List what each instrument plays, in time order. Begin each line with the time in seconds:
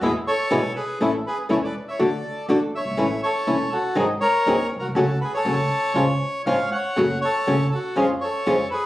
0.01 upright bass E2, nylon-string guitar B2 E3 G#3 B3 E4, bandoneon E4 G#4
0.27 bandoneon A4 C#5
0.51 upright bass B1, nylon-string guitar B2 E3 G#3 B3 E4
0.75 bandoneon G#4 B4
1.00 upright bass A1, nylon-string guitar E3 A3 C#4 E4, bandoneon E4 A4
1.27 bandoneon G#4 B4
1.49 upright bass E1, nylon-string guitar E3 A3 C#4 E4, bandoneon C#5
1.53 bandoneon A4
1.64 bandoneon B4 D5
1.88 bandoneon C#5 E5
1.99 upright bass D2, nylon-string guitar D3 A3 D4 F#4, bandoneon A4 D5
2.48 upright bass A1, nylon-string guitar D3 A3 D4 F#4, bandoneon A4 D5
2.75 bandoneon C#5 E5
2.80 upright bass F#1
2.85 upright bass G1
2.91 upright bass G#1
2.97 upright bass A1, nylon-string guitar E3 A3 C#4 E4
3.23 bandoneon A4 C#5
3.47 upright bass E1, nylon-string guitar E3 A3 C#4 E4
3.72 bandoneon F#4 A4
3.95 upright bass G#1, nylon-string guitar D#3 F#3 C4 D#4 G#4, bandoneon D#4 G#4
4.20 bandoneon A#4 C#5
4.46 upright bass D#2, nylon-string guitar D#3 F#3 C4 D#4 G#4
4.76 upright bass A#1, bandoneon A#4
4.81 upright bass B1, bandoneon F#4
4.88 upright bass C2
4.95 upright bass C#2, nylon-string guitar C#3 F#3 A3 C#4 F#4, bandoneon F#4 A4
5.21 bandoneon G#4 B4
5.34 bandoneon A4 C#5
5.45 upright bass C#2, nylon-string guitar C#3 F#3 A3 C#4 F#4
5.94 upright bass C#2, nylon-string guitar C#3 F3 G#3 C#4 F4
6.46 upright bass G#1, nylon-string guitar C#3 F3 G#3 C#4 F4, bandoneon C#5 F5
6.72 bandoneon C#5 F#5
6.96 upright bass F#1, nylon-string guitar C#3 F#3 A3 C#4 F#4
7.21 bandoneon A4 C#5
7.47 upright bass C#2, nylon-string guitar C#3 F#3 A3 C#4 F#4
7.72 bandoneon F#4 A4
7.96 upright bass F2, nylon-string guitar C#3 F3 G#3 C#4 F4, bandoneon G#4
8.00 bandoneon F4
8.21 bandoneon A4 C#5
8.47 upright bass F2, nylon-string guitar C#3 F3 G#3 C#4 F4
8.71 bandoneon G#4 B4